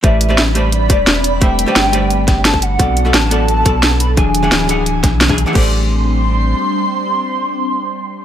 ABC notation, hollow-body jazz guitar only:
X:1
M:4/4
L:1/16
Q:1/4=174
K:Ador
V:1 name="Hollow-body jazz guitar"
[A,GBcd]3 [A,GBcd] z2 [A,GBcd]2 z2 [A,GBcd] z4 z | [A,GBce]3 [A,GBcd]3 [A,GBcd]8- [A,GBcd]2 | [B,FAd]3 [B,FAd] z2 [B,FAd]2 z2 [B,FAd] z4 z | [E,D^G^g]3 [E,DGf]3 [E,DGf]6- [E,DGf] [E,DGg] z [E,DGf] |
[A,GAcd]16- | [A,GAcd]16 |]